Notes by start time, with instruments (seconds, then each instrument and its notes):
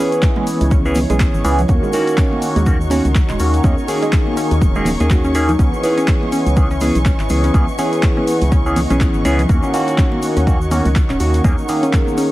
Already playing: tine electric piano E3, analog synth pad E4 B4 C#5 D#5 G#5, ambient pad E4 C#5 G#5 B5, violin section C#6
0.00 tine electric piano B3 C#4 G#4
0.12 closed hi-hat, shaker
0.22 kick, clap, closed hi-hat, shaker
0.36 synth arpeggio sound G#3, high conga
0.47 open hi-hat, shaker
0.61 fm bass C#2, closed hi-hat, shaker
0.71 synth arpeggio sound C#4, kick, closed hi-hat, shaker
0.85 tine electric piano E3 B3 C#4 G#4, shaker
0.95 open hi-hat, high conga, low conga, shaker
1.10 fm bass B1, tine electric piano E3 B3 C#4 G#4, synth arpeggio sound G#3, closed hi-hat, shaker
1.20 kick, clap, closed hi-hat, shaker
1.34 fm bass G#1, shaker
1.44 fm bass C#2, tine electric piano E3 B3 C#4 G#4, synth arpeggio sound C#4, open hi-hat, shaker
1.59 closed hi-hat, low conga, shaker
1.68 fm bass D#2, tine electric piano D#3 A#3 C#4 F#4, ambient pad D#4, analog synth pad F#4 A#4 D#5 F#5, kick, closed hi-hat, high conga, shaker
1.83 synth arpeggio sound G#3, shaker
1.93 tine electric piano D#3 A#3 C#4 F#4, open hi-hat, shaker
2.07 ambient pad A#5, closed hi-hat, shaker
2.17 synth arpeggio sound C#4, kick, clap, closed hi-hat, shaker
2.33 high conga
2.38 ambient pad F#5, open hi-hat
2.42 shaker
2.56 fm bass D#2, synth arpeggio sound G#3, closed hi-hat, shaker
2.66 tine electric piano D#3 A#3 C#4 F#4, kick, closed hi-hat, shaker
2.81 shaker
2.90 tine electric piano D#3 A#3 C#4 F#4, synth arpeggio sound C#4, open hi-hat, high conga, shaker
3.05 fm bass C#2, closed hi-hat, shaker
3.15 kick, clap, closed hi-hat, shaker
3.29 fm bass D#1, synth arpeggio sound G#3, clap, shaker
3.39 fm bass D#2, tine electric piano D#3 A#3 C#4 F#4, open hi-hat, shaker
3.54 closed hi-hat, shaker
3.64 fm bass D#2, tine electric piano D#3 A#3 C#4 G#4, synth arpeggio sound C#4, analog synth pad C#5 G#5, kick, closed hi-hat, high conga, shaker
3.78 shaker
3.88 tine electric piano D#3 A#3 C#4 G#4, ambient pad G#5, open hi-hat, shaker
4.02 synth arpeggio sound G#3, closed hi-hat, shaker
4.13 kick, clap, closed hi-hat, shaker
4.27 high conga
4.37 synth arpeggio sound C#4, open hi-hat, shaker
4.51 fm bass D#2, closed hi-hat, shaker
4.62 fm bass D#1, kick, closed hi-hat, shaker
4.75 tine electric piano D#3 A#3 C#4 G#4, synth arpeggio sound G#3, shaker
4.85 open hi-hat, high conga, low conga, shaker
5.00 fm bass D#2, tine electric piano D#3 A#3 C#4 G#4, closed hi-hat, shaker
5.10 synth arpeggio sound F#4, kick, clap, closed hi-hat, shaker
5.24 synth arpeggio sound C#4, shaker
5.35 tine electric piano D#3 A#3 C#4 G#4, open hi-hat, shaker
5.48 synth arpeggio sound D#4, closed hi-hat, low conga, shaker
5.59 fm bass C#2, tine electric piano E3 B3 C#4 G#4, synth arpeggio sound C#4, ambient pad E4, analog synth pad E4 B4 C#5 D#5, kick, closed hi-hat, high conga, shaker
5.74 shaker
5.83 tine electric piano E3 B3 C#4 G#4, open hi-hat, shaker
5.98 synth arpeggio sound C#4, closed hi-hat, shaker
6.07 kick, clap, closed hi-hat, shaker
6.23 high conga
6.32 synth arpeggio sound C#4, open hi-hat, shaker
6.46 fm bass C#2, closed hi-hat, shaker
6.56 tine electric piano E3 B3 C#4 G#4, kick, closed hi-hat, shaker
6.71 synth arpeggio sound C#4, shaker
6.81 tine electric piano E3 B3 C#4 G#4, open hi-hat, high conga, shaker
6.95 fm bass B1, closed hi-hat, shaker
7.05 synth arpeggio sound C#4, kick, clap, closed hi-hat, shaker
7.19 fm bass G#1, ambient pad B5, clap, shaker
7.29 fm bass C#2, tine electric piano E3 B3 C#4 G#4, open hi-hat, shaker
7.44 synth arpeggio sound C#4, closed hi-hat, shaker
7.54 fm bass C#2, tine electric piano E3 B3 C#4 G#4, analog synth pad F#5, kick, closed hi-hat, high conga, shaker
7.68 shaker
7.78 tine electric piano E3 B3 C#4 G#4, synth arpeggio sound C#4, open hi-hat, shaker
7.93 closed hi-hat, shaker
8.03 kick, clap, closed hi-hat, shaker
8.17 synth arpeggio sound C#4, high conga
8.27 open hi-hat, shaker
8.41 fm bass C#2, closed hi-hat, shaker
8.52 synth arpeggio sound C#4, kick, closed hi-hat, shaker
8.66 tine electric piano E3 B3 C#4 G#4, shaker
8.76 open hi-hat, high conga, low conga, shaker
8.90 fm bass B1, tine electric piano E3 B3 C#4 G#4, synth arpeggio sound C#4, closed hi-hat, shaker
9.00 kick, clap, closed hi-hat, shaker
9.14 fm bass G#1, shaker
9.25 fm bass C#2, tine electric piano E3 B3 C#4 G#4, synth arpeggio sound C#4, open hi-hat, shaker
9.39 closed hi-hat, low conga, shaker
9.49 fm bass D#2, tine electric piano D#3 A#3 C#4 F#4, ambient pad D#4, analog synth pad F#4 A#4, kick, closed hi-hat, high conga, shaker
9.63 synth arpeggio sound C#4, shaker
9.74 tine electric piano D#3 A#3 C#4 F#4, open hi-hat, shaker
9.88 closed hi-hat, shaker
9.98 synth arpeggio sound C#4, kick, clap, closed hi-hat, shaker
10.12 ambient pad F#5, high conga
10.22 open hi-hat, shaker
10.37 fm bass D#2, synth arpeggio sound C#4, ambient pad A#5, closed hi-hat, shaker
10.47 tine electric piano D#3 A#3 C#4 F#4, kick, closed hi-hat, shaker
10.61 shaker
10.71 tine electric piano D#3 A#3 C#4 F#4, synth arpeggio sound C#4, open hi-hat, high conga, shaker
10.85 fm bass C#2, closed hi-hat, shaker
10.95 kick, clap, closed hi-hat, shaker
11.10 fm bass D#1, synth arpeggio sound C#4, clap, shaker
11.20 fm bass D#2, tine electric piano D#3 A#3 C#4 F#4, open hi-hat, shaker
11.34 closed hi-hat, shaker
11.44 fm bass D#2, tine electric piano D#3 A#3 C#4 G#4, synth arpeggio sound C#4, analog synth pad G#4 A#4, kick, closed hi-hat, high conga, shaker
11.58 shaker
11.68 tine electric piano D#3 A#3 C#4 G#4, open hi-hat, shaker
11.83 synth arpeggio sound C#4, closed hi-hat, shaker
11.93 kick, clap, closed hi-hat, shaker
12.07 high conga, shaker
12.18 synth arpeggio sound C#4, open hi-hat, shaker